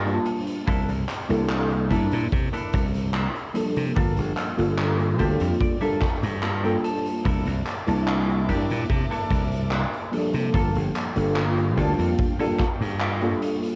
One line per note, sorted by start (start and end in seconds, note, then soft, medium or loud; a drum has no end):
0.00 0.18 G2 loud
0.06 0.65 G3 medium
0.06 0.65 A#3 medium
0.06 0.65 D4 medium
0.06 0.65 F4 medium
0.06 0.66 A5 medium
0.06 closed hi-hat soft
0.26 muted clean electric guitar stroke soft
0.26 closed hi-hat loud
0.47 closed hi-hat medium
0.67 0.83 C2 medium
0.67 0.89 A#3 loud
0.67 0.89 D4 medium
0.67 0.89 E4 loud
0.67 0.89 A4 loud
0.67 kick loud
0.67 closed hi-hat medium
0.89 1.04 C2 medium
0.89 closed hi-hat soft
1.08 muted clean electric guitar stroke soft
1.08 clap medium
1.08 closed hi-hat loud
1.29 1.92 C2 medium
1.29 1.86 G3 medium
1.29 1.86 A#3 medium
1.29 1.86 D4 medium
1.29 1.86 E4 medium
1.29 1.87 A4 loud
1.29 closed hi-hat medium
1.49 muted clean electric guitar stroke soft
1.49 clap loud
1.49 closed hi-hat medium
1.70 muted clean electric guitar stroke soft
1.70 closed hi-hat soft
1.90 2.06 G2 medium
1.90 2.27 G3 medium
1.90 2.22 A#3 medium
1.90 2.27 A#3 medium
1.90 2.28 D4 medium
1.90 2.22 D4 medium
1.90 2.22 E4 medium
1.90 2.28 E4 medium
1.90 2.22 A4 medium
1.90 kick medium
1.90 closed hi-hat medium
2.11 2.27 A#2 medium
2.11 closed hi-hat medium
2.31 2.48 C3 medium
2.31 kick loud
2.31 closed hi-hat medium
2.53 2.84 A#3 loud
2.53 2.84 D4 medium
2.53 2.84 E4 loud
2.53 2.84 A4 loud
2.53 closed hi-hat soft
2.73 3.26 C2 medium
2.73 kick loud
2.73 closed hi-hat loud
2.94 closed hi-hat medium
3.13 3.35 A#3 medium
3.13 3.35 D4 medium
3.13 3.35 E4 medium
3.13 3.36 C5 medium
3.13 clap loud
3.13 closed hi-hat medium
3.35 closed hi-hat soft
3.54 4.54 F3 medium
3.54 4.53 G3 medium
3.54 4.53 A#3 medium
3.54 4.54 D4 medium
3.54 4.54 A4 medium
3.54 muted clean electric guitar stroke soft
3.54 closed hi-hat loud
3.76 3.91 C3 medium
3.76 closed hi-hat medium
3.96 4.12 G1 medium
3.96 4.17 A#3 loud
3.96 4.18 F4 medium
3.96 4.18 A4 loud
3.96 kick loud
3.96 closed hi-hat medium
4.16 4.32 G1 medium
4.16 closed hi-hat soft
4.37 muted clean electric guitar stroke soft
4.37 clap medium
4.37 closed hi-hat loud
4.57 5.20 G1 medium
4.57 5.14 G3 medium
4.57 5.15 A#3 medium
4.57 5.15 D4 medium
4.57 5.15 F4 medium
4.57 5.15 A4 medium
4.57 closed hi-hat medium
4.78 muted clean electric guitar stroke soft
4.78 clap loud
4.78 closed hi-hat medium
4.99 muted clean electric guitar stroke soft
4.99 closed hi-hat soft
5.19 5.35 D2 medium
5.19 5.77 G3 medium
5.19 5.77 A#3 medium
5.19 5.51 A#3 medium
5.19 5.77 D4 medium
5.19 5.77 F4 medium
5.19 5.51 F4 medium
5.19 5.51 G4 medium
5.19 5.77 A4 loud
5.19 5.58 C5 medium
5.19 kick medium
5.19 closed hi-hat medium
5.40 5.56 F2 medium
5.40 closed hi-hat medium
5.61 5.81 D5 medium
5.61 kick loud
5.61 closed hi-hat medium
5.81 6.04 G3 medium
5.81 6.12 A#3 loud
5.81 6.04 A#3 medium
5.81 6.04 D4 medium
5.81 6.12 F4 medium
5.81 6.05 F4 medium
5.81 6.13 A4 loud
5.81 6.05 A4 loud
5.81 6.39 E5 medium
5.81 closed hi-hat soft
6.01 kick loud
6.01 clap medium
6.01 closed hi-hat medium
6.23 6.76 G2 loud
6.23 closed hi-hat medium
6.42 6.64 A#3 medium
6.42 6.64 F4 medium
6.42 6.64 A4 medium
6.42 6.63 F5 medium
6.42 clap loud
6.42 closed hi-hat medium
6.63 7.23 G3 medium
6.63 7.23 A#3 medium
6.63 7.23 D4 medium
6.63 7.23 F4 medium
6.63 7.23 A4 medium
6.63 6.83 G5 medium
6.63 closed hi-hat soft
6.84 7.22 A5 medium
6.84 muted clean electric guitar stroke soft
6.84 closed hi-hat medium
7.06 closed hi-hat medium
7.25 7.41 C2 medium
7.25 7.46 A#3 loud
7.25 10.51 A#3 medium
7.25 7.46 D4 medium
7.25 7.46 E4 medium
7.25 7.47 A4 loud
7.25 10.51 E5 medium
7.25 10.51 A5 medium
7.25 10.51 D6 medium
7.25 kick loud
7.25 closed hi-hat medium
7.45 7.61 C2 medium
7.45 closed hi-hat soft
7.66 muted clean electric guitar stroke soft
7.66 clap medium
7.66 closed hi-hat medium
7.87 8.50 C2 medium
7.87 8.43 G3 medium
7.87 8.44 A#3 medium
7.87 8.44 D4 medium
7.87 8.44 E4 medium
7.87 8.44 A5 loud
7.87 closed hi-hat medium
8.07 muted clean electric guitar stroke soft
8.07 clap loud
8.07 closed hi-hat medium
8.28 muted clean electric guitar stroke soft
8.28 closed hi-hat soft
8.48 8.64 G2 medium
8.48 8.85 G3 medium
8.48 8.79 A#3 medium
8.48 8.85 A#3 medium
8.48 8.80 D4 medium
8.48 8.85 D4 medium
8.48 8.80 E4 medium
8.48 8.86 E4 medium
8.48 8.80 G4 medium
8.48 kick medium
8.48 closed hi-hat loud
8.70 8.85 A#2 medium
8.70 closed hi-hat medium
8.89 9.05 C3 medium
8.89 kick loud
8.89 closed hi-hat medium
9.11 9.41 A#3 loud
9.11 9.42 D4 medium
9.11 9.42 E4 medium
9.11 9.42 A4 loud
9.11 closed hi-hat soft
9.30 9.84 C2 medium
9.30 kick loud
9.30 closed hi-hat medium
9.52 closed hi-hat medium
9.71 9.93 A#3 medium
9.71 9.93 D4 medium
9.71 9.93 E4 medium
9.71 9.93 C5 medium
9.71 clap loud
9.71 closed hi-hat medium
9.93 closed hi-hat soft
10.12 11.12 F3 medium
10.12 11.11 G3 medium
10.12 11.11 A#3 medium
10.12 11.11 D4 medium
10.12 11.12 A4 medium
10.12 muted clean electric guitar stroke soft
10.12 closed hi-hat medium
10.33 10.49 C3 medium
10.33 closed hi-hat medium
10.54 10.69 G1 loud
10.54 10.75 A#3 loud
10.54 10.75 F4 loud
10.54 10.75 A4 loud
10.54 13.75 F5 medium
10.54 13.75 G5 medium
10.54 kick loud
10.54 closed hi-hat medium
10.75 10.90 G1 medium
10.75 closed hi-hat soft
10.95 muted clean electric guitar stroke soft
10.95 clap medium
10.95 closed hi-hat medium
11.15 11.77 G1 medium
11.15 11.72 G3 medium
11.15 11.72 A#3 medium
11.15 11.72 D4 medium
11.15 11.73 F4 medium
11.15 11.73 A4 medium
11.15 closed hi-hat medium
11.36 muted clean electric guitar stroke soft
11.36 clap loud
11.36 closed hi-hat medium
11.57 muted clean electric guitar stroke soft
11.57 closed hi-hat soft
11.77 11.93 D2 medium
11.77 12.34 G3 medium
11.77 12.34 A#3 medium
11.77 12.09 A#3 medium
11.77 12.34 D4 medium
11.77 12.09 F4 medium
11.77 12.35 F4 medium
11.77 12.09 A4 medium
11.77 12.35 A5 loud
11.77 kick soft
11.77 closed hi-hat medium
11.99 12.13 F2 medium
11.99 closed hi-hat medium
12.18 kick loud
12.18 closed hi-hat medium
12.39 12.62 G3 loud
12.39 12.70 A#3 loud
12.39 12.62 A#3 medium
12.39 12.62 D4 medium
12.39 12.70 F4 loud
12.39 12.62 F4 medium
12.39 12.70 A4 loud
12.39 12.63 A4 loud
12.39 closed hi-hat soft
12.59 kick loud
12.59 clap medium
12.59 closed hi-hat medium
12.81 13.33 G2 loud
12.81 closed hi-hat medium
13.00 13.22 A#3 medium
13.00 13.22 F4 medium
13.00 13.22 G4 loud
13.00 clap medium
13.00 closed hi-hat medium
13.21 13.75 G3 medium
13.21 13.75 A#3 medium
13.21 13.75 D4 medium
13.21 13.75 F4 medium
13.21 13.75 A4 medium
13.21 closed hi-hat soft
13.42 muted clean electric guitar stroke soft
13.42 closed hi-hat medium
13.63 closed hi-hat medium